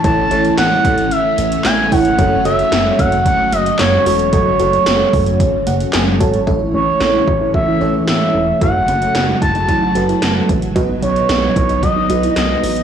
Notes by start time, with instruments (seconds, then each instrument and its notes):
Already playing: string machine E3 A3 C#4
0.04 analog synth bass A1, fm electric piano E4 A4 C#5, analog synth lead A5, kick, closed hi-hat
0.31 analog synth bass A1, fm electric piano E4 A4 C#5, closed hi-hat
0.45 closed hi-hat
0.58 analog synth bass A1, analog synth lead F#5, snare, closed hi-hat
0.85 analog synth bass A1, kick, closed hi-hat
0.98 closed hi-hat
1.11 analog synth lead E5, closed hi-hat
1.38 analog synth bass A1, closed hi-hat
1.52 closed hi-hat
1.65 analog synth bass A1, analog synth lead G#5, snare, clap, closed hi-hat
1.92 analog synth bass E1, fm electric piano E4 A4 C#5, analog synth lead F#5, kick, open hi-hat
2.05 closed hi-hat
2.18 analog synth bass F#1, string machine F#3, fm electric piano F#4 A4 C#5, kick, closed hi-hat
2.45 analog synth bass F#1, fm electric piano F#4 A4 C#5, analog synth lead E5, closed hi-hat
2.59 closed hi-hat
2.72 analog synth bass F#1, snare, closed hi-hat
2.99 analog synth bass F#1, analog synth lead F#5, kick, closed hi-hat
3.12 closed hi-hat
3.26 analog synth lead F#5, kick, closed hi-hat
3.52 analog synth bass F#1, analog synth lead D#5, closed hi-hat
3.66 closed hi-hat
3.79 analog synth bass F#1, analog synth lead C#5, snare, clap, closed hi-hat
4.06 analog synth bass E1, fm electric piano F#4 A4 C#5, analog synth lead C#5, open hi-hat
4.19 closed hi-hat
4.33 analog synth bass F#1, fm electric piano F#4 A4 D#5, kick, closed hi-hat
4.60 analog synth bass F#1, fm electric piano F#4 A4 C#5, closed hi-hat
4.73 closed hi-hat
4.86 analog synth bass F#1, snare, closed hi-hat
5.13 analog synth bass F#1, kick, open hi-hat
5.26 closed hi-hat
5.40 kick, closed hi-hat
5.67 analog synth bass F#1, fm electric piano F#5, closed hi-hat
5.80 closed hi-hat
5.93 analog synth bass F#1, fm electric piano G#5, snare, clap, closed hi-hat
6.20 analog synth bass G#1, fm electric piano F#4 A4 C#5 A5, kick, closed hi-hat
6.34 closed hi-hat
6.47 analog synth bass A1, string machine E3 A3 C#4, synth arpeggio sound E4, fm electric piano E4 A4 C#5, kick
6.60 synth arpeggio sound D#4
6.74 analog synth bass A1, synth arpeggio sound C#4, analog synth lead C#5
7.00 analog synth bass A1, synth arpeggio sound C#4, snare
7.14 synth arpeggio sound E4
7.27 analog synth bass A1, synth arpeggio sound F#4, kick
7.41 synth arpeggio sound E4
7.54 synth arpeggio sound F#4, analog synth lead E5, kick
7.68 synth arpeggio sound E4
7.81 analog synth bass A1, synth arpeggio sound C#4, fm electric piano E4 A4 C#5
7.94 synth arpeggio sound E4
8.08 analog synth bass A1, synth arpeggio sound D#4, analog synth lead E5, snare
8.35 analog synth bass E1, synth arpeggio sound C#4
8.61 analog synth bass F#1, string machine C#3 F#3 F#4, synth arpeggio sound E4, fm electric piano F#4 A4 C#5, analog synth lead F#5, kick, closed hi-hat
8.75 synth arpeggio sound D#4
8.88 analog synth bass F#1, synth arpeggio sound C#4, closed hi-hat
9.02 closed hi-hat
9.15 analog synth bass F#1, synth arpeggio sound C#4, snare, closed hi-hat
9.28 synth arpeggio sound D#4
9.42 analog synth bass F#1, synth arpeggio sound E4, analog synth lead A5, kick, closed hi-hat
9.55 synth arpeggio sound D#4, closed hi-hat
9.68 synth arpeggio sound E4, kick, closed hi-hat
9.82 synth arpeggio sound D#4
9.95 analog synth bass F#1, synth arpeggio sound C#4, fm electric piano F#4 A4 B4, closed hi-hat
10.09 synth arpeggio sound E4, closed hi-hat
10.22 analog synth bass F#1, synth arpeggio sound D#4, snare, closed hi-hat
10.49 analog synth bass A1, synth arpeggio sound C#4, kick, closed hi-hat
10.62 closed hi-hat
10.76 analog synth bass B1, string machine B3 D#4, synth arpeggio sound F#4, fm electric piano F#4 B4 D#5, kick, closed hi-hat
10.89 synth arpeggio sound D#4
11.02 analog synth bass B1, synth arpeggio sound C#4, analog synth lead C#5, closed hi-hat
11.16 closed hi-hat
11.29 analog synth bass B1, synth arpeggio sound C#4, snare, closed hi-hat
11.43 synth arpeggio sound D#4
11.56 analog synth bass B1, synth arpeggio sound E4, kick, closed hi-hat
11.69 synth arpeggio sound D#4, closed hi-hat
11.83 synth arpeggio sound F#4, analog synth lead D#5, kick, closed hi-hat
11.96 synth arpeggio sound D#4
12.10 analog synth bass B1, synth arpeggio sound B3, fm electric piano F#4 B4 D#5, closed hi-hat
12.23 synth arpeggio sound E4, closed hi-hat
12.36 analog synth bass B1, synth arpeggio sound D#4, analog synth lead D#5, snare, closed hi-hat
12.63 analog synth bass A1, synth arpeggio sound B3, open hi-hat
12.76 closed hi-hat